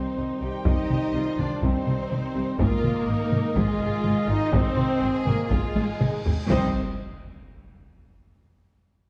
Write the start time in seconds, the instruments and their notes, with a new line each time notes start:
Already playing: trombone section D#3 G3, viola section C4, french horn section C4, violin section D#4 C5, trumpet C5
0.17 double bass section C2, cello section C3
0.41 double bass section C2, cello section C3, french horn section G4, viola section G4, violin section G5
0.65 double bass section C2, cello section C3, french horn section D#4, viola section D#4, violin section G4 D#5, taiko
0.90 double bass section C2, cello section C3, taiko mid
1.14 double bass section C2, cello section C3, violin section F4
1.39 double bass section C2, cello section C3, french horn section D4, viola section D4, violin section D5, taiko mid
1.62 double bass section C2, cello section C3, viola section C4, french horn section C4, violin section D#4 C5, taiko
1.86 double bass section C2, cello section C3, taiko mid
2.11 double bass section C2, cello section C3, taiko mid
2.35 double bass section C2, cello section C3
2.58 double bass section G#1, cello section G#2, trombone section D#3 G#3, viola section A#3, french horn section A#3, violin section F4 A#4, trumpet D#5, taiko
2.83 double bass section G#1, cello section G#2, taiko mid
3.07 double bass section G#1, cello section G#2, violin section D#4
3.31 double bass section G#1, cello section G#2, taiko mid
3.56 double bass section G#1, cello section G#2, viola section G#3, french horn section G#3, violin section F4 G#4, taiko
3.80 double bass section G#1, cello section G#2, taiko mid
4.04 double bass section G#1, cello section G#2, taiko mid
4.27 double bass section G#1, cello section G#2, viola section D#4, french horn section D#4, violin section D#5
4.53 double bass section G#1, cello section G#2, viola section C4, french horn section C4, violin section D#4 C5, taiko, cymbal swell
4.77 double bass section G#1, cello section G#2, taiko mid
5.01 double bass section G#1, cello section G#2, violin section G#4
5.26 double bass section G#1, cello section G#2, viola section A#3, french horn section A#3, violin section A#4, taiko mid
5.50 double bass section G#1, cello section G#2, french horn section G#3, viola section G#3, violin section F4 G#4, taiko
5.75 double bass section G#1, cello section G#2, taiko high
6.00 double bass section G#1, cello section G#2, violin section D#4, taiko mid
6.25 double bass section G#1, cello section G#2, taiko low
6.49 double bass section C2, cello section C3, trombone section D#3 G3, viola section C4, french horn section C4, violin section D#4 C5, trumpet D#5, taiko, impact